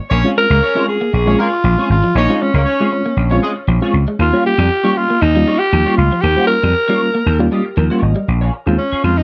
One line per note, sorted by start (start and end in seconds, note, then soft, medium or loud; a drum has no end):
0.01 muted clean electric guitar stroke soft
0.10 0.22 A#1 medium
0.10 0.20 A#3 medium
0.10 0.31 C#4 loud
0.10 0.31 C#5 loud
0.10 muted clean electric guitar stroke soft
0.24 0.45 G#3 medium
0.24 0.45 C4 medium
0.24 0.45 C#4 medium
0.24 0.45 F4 medium
0.24 0.36 F4 medium
0.24 0.36 G#4 medium
0.24 0.37 C#5 medium
0.37 0.85 A#4 loud
0.37 muted clean electric guitar stroke soft
0.50 0.60 C#2 medium
0.50 0.58 G#3 medium
0.50 0.60 A#3 medium
0.50 0.60 A#4 medium
0.62 0.83 C#4 loud
0.62 0.83 C#5 loud
0.62 muted clean electric guitar stroke soft
0.75 0.96 G#3 medium
0.75 0.84 G#3 medium
0.75 0.96 C4 medium
0.75 0.96 C#4 medium
0.75 0.97 F4 medium
0.75 0.87 F4 medium
0.75 0.87 G#4 medium
0.75 0.88 C#5 medium
0.88 1.12 G#4 medium
0.88 muted clean electric guitar stroke soft
1.01 1.09 A#3 medium
1.01 muted clean electric guitar stroke soft
1.14 1.34 A#1 medium
1.14 1.42 G#4 medium
1.14 muted clean electric guitar stroke soft
1.26 1.47 G#3 medium
1.26 1.35 G#3 medium
1.26 1.47 C4 medium
1.26 1.47 C#4 medium
1.26 1.36 C#4 medium
1.26 1.47 F4 medium
1.26 1.36 C#5 medium
1.26 muted clean electric guitar stroke soft
1.39 1.48 G#3 medium
1.39 1.47 A#3 medium
1.39 1.55 F4 medium
1.39 1.90 F4 loud
1.39 1.54 G#4 medium
1.39 1.47 A#4 medium
1.39 1.52 C#5 medium
1.54 muted clean electric guitar stroke soft
1.64 1.75 A#1 medium
1.64 1.73 F3 medium
1.64 muted clean electric guitar stroke soft
1.78 1.98 G#3 medium
1.78 1.99 C4 medium
1.78 1.99 C#4 medium
1.78 1.99 F4 medium
1.78 1.89 F4 medium
1.78 1.90 G#4 medium
1.78 1.90 C#5 medium
1.78 muted clean electric guitar stroke soft
1.90 2.01 G#1 medium
1.90 2.18 F4 medium
1.90 muted clean electric guitar stroke soft
2.04 2.11 F3 medium
2.04 muted clean electric guitar stroke soft
2.15 2.26 A#1 loud
2.15 2.24 A#3 medium
2.15 2.36 C#4 loud
2.15 2.44 D#4 medium
2.15 2.36 C#5 loud
2.15 muted clean electric guitar stroke soft
2.29 2.50 G#3 medium
2.29 2.50 C4 medium
2.29 2.50 C#4 medium
2.29 2.50 F4 medium
2.29 2.39 F4 medium
2.29 2.40 G#4 medium
2.29 2.40 C#5 medium
2.40 2.55 C#4 medium
2.40 muted clean electric guitar stroke soft
2.54 2.64 C#2 loud
2.54 2.63 G#3 medium
2.54 2.64 A#3 medium
2.54 3.28 C#4 medium
2.54 2.64 A#4 medium
2.54 muted clean electric guitar stroke medium
2.65 2.86 C#4 loud
2.65 2.86 C#5 loud
2.65 muted clean electric guitar stroke soft
2.80 3.01 G#3 medium
2.80 2.88 G#3 medium
2.80 3.01 C4 medium
2.80 3.01 C#4 medium
2.80 3.01 F4 medium
2.80 2.91 F4 medium
2.80 2.91 G#4 medium
2.80 2.92 C#5 medium
2.92 muted clean electric guitar stroke soft
3.05 3.13 A#3 medium
3.05 muted clean electric guitar stroke soft
3.17 3.38 A#1 medium
3.17 muted clean electric guitar stroke soft
3.30 3.52 G#3 medium
3.30 3.39 G#3 medium
3.30 3.52 C4 medium
3.30 3.40 C#4 medium
3.30 3.52 C#4 medium
3.30 3.52 F4 loud
3.30 3.40 C#5 medium
3.30 muted clean electric guitar stroke soft
3.42 3.51 G#3 medium
3.42 3.52 G#3 medium
3.42 3.58 F4 medium
3.42 3.56 G#4 medium
3.42 3.51 G#4 medium
3.42 3.55 D#5 medium
3.56 muted clean electric guitar stroke soft
3.68 3.79 A#1 medium
3.68 3.77 F3 medium
3.68 muted clean electric guitar stroke soft
3.81 4.02 G#3 medium
3.81 4.03 C4 medium
3.81 4.03 C#4 medium
3.81 4.03 F4 loud
3.81 3.93 F4 medium
3.81 3.94 G#4 medium
3.81 3.94 C#5 loud
3.81 muted clean electric guitar stroke soft
3.94 4.05 C#2 medium
3.94 muted clean electric guitar stroke soft
4.08 4.15 G#3 medium
4.08 muted clean electric guitar stroke soft
4.19 4.30 D#2 loud
4.19 4.28 A#3 medium
4.19 4.44 F4 medium
4.19 muted clean electric guitar stroke soft
4.32 4.53 G3 medium
4.32 4.54 A#3 medium
4.32 4.54 C#4 medium
4.32 4.54 F4 medium
4.32 4.43 F4 medium
4.32 4.44 G4 medium
4.32 4.45 C#5 medium
4.45 4.99 G4 medium
4.45 muted clean electric guitar stroke soft
4.58 4.68 F2 loud
4.58 4.67 G3 medium
4.58 muted clean electric guitar stroke medium
4.70 muted clean electric guitar stroke soft
4.84 5.05 G3 medium
4.84 4.92 G3 medium
4.84 5.05 A#3 medium
4.84 5.05 C#4 medium
4.84 5.05 F4 medium
4.84 4.94 F4 medium
4.84 4.95 G4 medium
4.84 4.95 C#5 medium
4.95 5.23 F4 medium
4.95 muted clean electric guitar stroke soft
5.09 5.18 A#3 medium
5.09 muted clean electric guitar stroke soft
5.20 5.43 D#2 loud
5.20 5.60 D#4 loud
5.20 muted clean electric guitar stroke soft
5.34 5.56 G3 medium
5.34 5.43 G3 medium
5.34 5.56 A#3 medium
5.34 5.56 C#4 medium
5.34 5.56 F4 medium
5.34 muted clean electric guitar stroke medium
5.46 5.56 G3 medium
5.46 5.62 F4 medium
5.46 5.60 G4 medium
5.46 5.59 C#5 medium
5.59 5.97 G4 loud
5.59 muted clean electric guitar stroke soft
5.72 5.84 D#2 loud
5.72 5.81 F3 medium
5.72 muted clean electric guitar stroke soft
5.85 6.07 G3 medium
5.85 6.07 A#3 medium
5.85 6.07 C#4 medium
5.85 5.97 F4 medium
5.85 6.07 F4 medium
5.85 5.98 G4 medium
5.85 5.98 C#5 medium
5.85 muted clean electric guitar stroke soft
5.97 6.09 C#2 medium
5.97 6.23 F4 medium
5.97 muted clean electric guitar stroke soft
6.12 6.20 F3 medium
6.12 muted clean electric guitar stroke soft
6.21 6.35 D#2 loud
6.21 6.32 A#3 medium
6.21 6.47 G4 loud
6.21 muted clean electric guitar stroke soft
6.36 6.58 G3 medium
6.36 6.58 A#3 medium
6.36 6.58 C#4 medium
6.36 6.58 F4 medium
6.36 6.48 F4 medium
6.36 6.48 G4 medium
6.36 6.49 C#5 medium
6.47 7.46 A#4 loud
6.47 muted clean electric guitar stroke medium
6.62 6.73 F2 medium
6.62 6.71 G3 medium
6.62 muted clean electric guitar stroke soft
6.74 muted clean electric guitar stroke soft
6.87 7.09 G3 medium
6.87 6.96 G3 medium
6.87 7.09 A#3 medium
6.87 7.09 C#4 medium
6.87 6.99 F4 medium
6.87 7.10 F4 medium
6.87 7.00 G4 medium
6.87 7.00 C#5 medium
7.00 muted clean electric guitar stroke soft
7.14 7.22 A#3 medium
7.14 muted clean electric guitar stroke soft
7.26 7.47 D#2 medium
7.26 muted clean electric guitar stroke soft
7.39 7.60 G3 medium
7.39 7.48 G3 medium
7.39 7.60 A#3 medium
7.39 7.60 C#4 medium
7.39 7.60 F4 loud
7.39 muted clean electric guitar stroke soft
7.51 7.60 G3 medium
7.51 7.67 F4 medium
7.51 7.65 G4 medium
7.51 7.76 G4 medium
7.51 7.64 D#5 medium
7.65 muted clean electric guitar stroke soft
7.77 7.88 D#2 medium
7.77 7.86 F3 medium
7.77 8.01 A#4 medium
7.77 muted clean electric guitar stroke medium
7.90 8.11 G3 medium
7.90 8.11 A#3 medium
7.90 8.11 C#4 medium
7.90 8.12 F4 medium
7.90 8.01 F4 medium
7.90 8.01 G4 medium
7.90 8.02 C#5 medium
7.90 muted clean electric guitar stroke soft
8.02 8.13 G#1 medium
8.02 8.26 D#5 medium
8.02 muted clean electric guitar stroke soft
8.16 8.23 G3 medium
8.16 muted clean electric guitar stroke soft
8.28 8.49 A#1 medium
8.28 muted clean electric guitar stroke soft
8.41 8.51 F4 medium
8.41 8.52 G#4 medium
8.41 8.52 C#5 medium
8.52 muted clean electric guitar stroke soft
8.66 8.77 D#2 medium
8.66 8.82 G#3 medium
8.66 8.82 C4 medium
8.66 8.82 C#4 medium
8.66 8.82 F4 loud
8.66 muted clean electric guitar stroke soft
8.78 9.02 C#4 medium
8.78 muted clean electric guitar stroke soft
8.92 9.03 F4 medium
8.92 9.03 G#4 medium
8.92 9.04 C#5 medium
8.92 muted slap bass stroke soft
9.04 9.23 F2 medium
9.04 9.15 G#3 medium
9.04 9.15 C4 medium
9.04 9.15 C#4 medium
9.04 9.19 F4 medium
9.04 9.16 F4 medium
9.04 muted clean electric guitar stroke soft
9.17 9.23 D#4 medium
9.17 muted clean electric guitar stroke soft